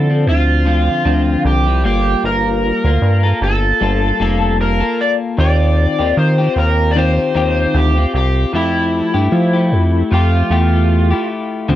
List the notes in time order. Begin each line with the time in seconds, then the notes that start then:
Already playing: D3 A4
0.10 F3 C4
0.26 D2 F4
0.65 D3 F3 C4
1.05 D2 D3 F3 C4
1.45 C2 G4
1.66 F3 C4 E4
1.84 G1 G3 A#3 F4 G4
2.23 G1 A#4
2.84 D2 A#3 F4
3.02 G2
3.23 A#3 F4 A4
3.41 G1 A4
3.80 G1 G3 A#3 F4 A4
4.20 F1 G3 A#3 F4 A4
4.61 A#4
4.80 A#3 F4 A4
5.01 D5
5.37 D#2 D#3 C4 F4 G4 D5
5.99 D#2 C4 F4 G4
6.17 D#3 C5
6.38 C4 F4 G4
6.56 D#2 A#4
6.91 D5
6.95 D#3 C4 F4 G4 C5
7.35 D#2 D#3 C4 F4 G4
7.74 D2 G4
7.96 C4 F4 G4
8.14 C2 G4
8.53 F2 F3 A3 E4 G4
9.14 G2 A3 E4 G4
9.32 F3
9.53 A3 E4 G4
9.72 F2
10.11 F2 F3 A3 F4 G4
10.50 E2 A3 G4
11.11 A3 E4 G4
11.69 D2 D3 F3 C4